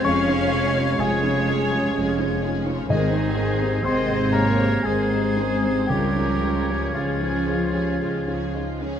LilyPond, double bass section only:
\new Staff \with { instrumentName = "Double bass section" } { \clef bass \time 3/4 \key des \lydian \tempo 4 = 60 f,,4 f,,4 f,,4 | aes,,4 aes,,4 aes,,4 | des,4 des,4 des,4 | }